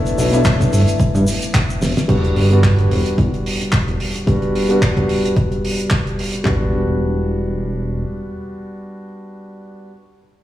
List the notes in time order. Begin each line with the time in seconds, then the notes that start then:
Already playing: A3 B3 D4 E4
0.06 closed hi-hat, shaker
0.18 B1, open hi-hat, shaker
0.32 A3 B3 D4 E4, closed hi-hat, shaker
0.45 kick, clap, closed hi-hat, shaker
0.60 kick, closed hi-hat, shaker
0.72 G1, open hi-hat, shaker
0.88 closed hi-hat, shaker
1.00 kick, closed hi-hat, shaker
1.14 G2, closed hi-hat, shaker
1.27 open hi-hat, shaker
1.42 closed hi-hat, shaker
1.54 kick, clap, closed hi-hat, shaker
1.70 closed hi-hat, shaker
1.81 E1, snare, open hi-hat, shaker
1.97 snare, closed hi-hat, shaker
2.08 E1 G3 B3 D4 F#4, kick, closed hi-hat, crash
2.24 closed hi-hat
2.36 G1, open hi-hat
2.50 G3 B3 D4 F#4, closed hi-hat
2.63 kick, clap, closed hi-hat
2.78 closed hi-hat
2.91 E1, open hi-hat
3.06 closed hi-hat
3.18 E2, kick, closed hi-hat
3.34 closed hi-hat
3.46 open hi-hat
3.61 closed hi-hat
3.72 kick, clap, closed hi-hat
3.88 E1, closed hi-hat
4.00 open hi-hat
4.15 closed hi-hat
4.27 G3 B3 D4 F#4, kick, closed hi-hat
4.42 closed hi-hat
4.55 open hi-hat
4.69 G3 B3 D4 F#4, closed hi-hat
4.82 kick, clap, closed hi-hat
4.97 kick, closed hi-hat
5.09 open hi-hat
5.25 closed hi-hat
5.37 kick, closed hi-hat
5.52 closed hi-hat
5.65 open hi-hat
5.79 closed hi-hat
5.90 kick, clap, closed hi-hat
6.07 closed hi-hat
6.19 open hi-hat
6.34 closed hi-hat
6.44 E1 G3 B3 D4 F#4, kick, clap, floor tom